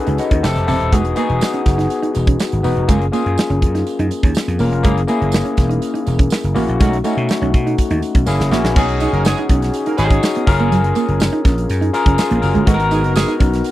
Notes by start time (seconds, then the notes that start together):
Already playing: C#4 D#4 F#4 G#4 A4 B4
0.07 C#2 D#4, closed hi-hat
0.18 B4 D#5 F#5, muted clean electric guitar stroke, closed hi-hat, tambourine
0.31 D#2 C#4, kick, closed hi-hat
0.43 F1 C4 E4 G4 A4 A5, snare, tambourine
0.56 F1, snare, closed hi-hat
0.67 E1 C4 E4 G4 A4, open hi-hat, tambourine
0.81 D#1, closed hi-hat
0.92 E1 G#3 B3 D#4 F#4 G#4, kick, closed hi-hat, tambourine
1.05 closed hi-hat
1.16 A#3 B3 D#4 F#4 G#4, closed hi-hat, tambourine
1.29 E1, muted clean electric guitar stroke, closed hi-hat
1.41 snare, tambourine
1.53 C#4, closed hi-hat
1.66 F#1, muted clean electric guitar stroke, kick, snare, closed hi-hat, tambourine
1.78 D#4, snare, closed hi-hat
1.90 closed hi-hat, tambourine
2.03 D#4, closed hi-hat
2.15 E1, muted clean electric guitar stroke, closed hi-hat, tambourine
2.27 C#4, kick, closed hi-hat
2.40 snare, tambourine
2.52 G#1, closed hi-hat
2.63 E1 B3 D#4 F#4 B4, open hi-hat, tambourine
2.77 F1, closed hi-hat
2.88 F#1 G#3 A#3 C#4 F4 G#4, kick, closed hi-hat, tambourine
3.02 closed hi-hat
3.12 A#3 C#4 F4 G#4, closed hi-hat, tambourine
3.26 F#2, muted clean electric guitar stroke, closed hi-hat
3.38 snare, tambourine
3.50 F#1 C#4, closed hi-hat
3.62 F#2, muted clean electric guitar stroke, kick, closed hi-hat
3.75 D#4, snare, closed hi-hat
3.87 closed hi-hat, tambourine
3.99 F#2 D#4, closed hi-hat
4.11 muted clean electric guitar stroke, closed hi-hat, tambourine
4.23 D#2 C#4, kick, closed hi-hat
4.35 snare, tambourine
4.48 F2, closed hi-hat
4.59 E1 A#3 C#4 F4 A#4, open hi-hat, tambourine
4.72 F1, closed hi-hat
4.83 F#1 G#3 A#3 C#4 E4 G#4, kick, closed hi-hat, tambourine
4.97 closed hi-hat
5.07 A#3 C#4 E4 G#4, closed hi-hat, tambourine
5.21 F#1, muted clean electric guitar stroke, closed hi-hat
5.32 snare, tambourine
5.45 C#4, closed hi-hat
5.57 E1, muted clean electric guitar stroke, kick, snare, closed hi-hat, tambourine
5.69 D#4, closed hi-hat
5.82 closed hi-hat, tambourine
5.94 D#4, closed hi-hat
6.06 E1, muted clean electric guitar stroke, closed hi-hat, tambourine
6.19 C#4, kick, closed hi-hat
6.30 snare, tambourine
6.44 F#1, closed hi-hat
6.54 A1 A#3 C#4 E4 F#4, open hi-hat, tambourine
6.68 A#1, closed hi-hat
6.80 B1 G#3 A3 C#4 D#4 F#4, kick, closed hi-hat, tambourine
6.93 closed hi-hat
7.04 A3 C#4 D#4 F#4, closed hi-hat, tambourine
7.17 B2, muted clean electric guitar stroke, closed hi-hat
7.29 snare, tambourine
7.42 B1 C#4, closed hi-hat
7.54 B2, muted clean electric guitar stroke, kick, closed hi-hat
7.66 D#4, closed hi-hat
7.78 kick, closed hi-hat, tambourine
7.90 D#2 D#4, closed hi-hat
8.02 muted clean electric guitar stroke, closed hi-hat, tambourine
8.15 B1 C#4, kick, closed hi-hat
8.26 F#1 A#3 C#4 E4 G#4, snare, tambourine
8.40 F#1, snare
8.51 A1 A#3 C#4 E4 F#4, snare, tambourine
8.64 A#1, snare
8.76 B1 B3 C#4 D#4 F#4 G#4, kick, crash, tambourine
8.89 muted clean electric guitar stroke, closed hi-hat
9.00 G#3 B3 D#4 G#4, closed hi-hat, tambourine
9.13 F#1 A#3 D#4 F#4 A#4, closed hi-hat
9.25 G#3 B3 D#4 G#4, muted clean electric guitar stroke, snare, tambourine
9.38 D#4, closed hi-hat
9.49 B1 C#4, kick, closed hi-hat
9.62 snare, closed hi-hat
9.74 closed hi-hat, tambourine
9.85 A#3 D#4 F#4 A#4, closed hi-hat
9.97 G#1 B3 C#4 D#4 F#4 G#4 B4, muted clean electric guitar stroke, closed hi-hat, tambourine
10.11 C#4, kick, closed hi-hat
10.23 snare, tambourine
10.35 B3, closed hi-hat
10.47 F#1 C#4 F4 G#4 A#4, muted clean electric guitar stroke, kick, open hi-hat, tambourine
10.60 A#3, closed hi-hat
10.72 F#1 F#3, closed hi-hat, tambourine
10.84 muted clean electric guitar stroke, closed hi-hat
10.95 A#3, closed hi-hat, tambourine
11.09 F#1, closed hi-hat
11.20 muted clean electric guitar stroke, snare, tambourine
11.33 D#4, closed hi-hat
11.45 A#1 C#4, kick, snare, closed hi-hat
11.58 closed hi-hat
11.70 F#2, closed hi-hat, tambourine
11.81 D#4, closed hi-hat
11.93 C#4 F4 G#4 A#4, muted clean electric guitar stroke, closed hi-hat, tambourine
12.06 F#1 C#4, kick, closed hi-hat
12.18 F4 G#4, snare, tambourine
12.31 A#1 A#3, closed hi-hat
12.42 F#1 F#4 A#4, muted clean electric guitar stroke, open hi-hat, tambourine
12.55 G1 G#3, closed hi-hat
12.66 G#1 G#3 B3 D#4 F#4 A4, kick, closed hi-hat, tambourine
12.74 A#4
12.79 muted clean electric guitar stroke, closed hi-hat
12.91 G#3 B3 D#4 G#4, closed hi-hat, tambourine
13.03 F#1 A#3 D#4 F#4 A#4, closed hi-hat
13.15 G#3 B3 D#4 G#4, muted clean electric guitar stroke, snare, tambourine
13.28 D#4, closed hi-hat
13.40 B1 C#4, kick, closed hi-hat, tambourine
13.53 snare, closed hi-hat
13.64 closed hi-hat, tambourine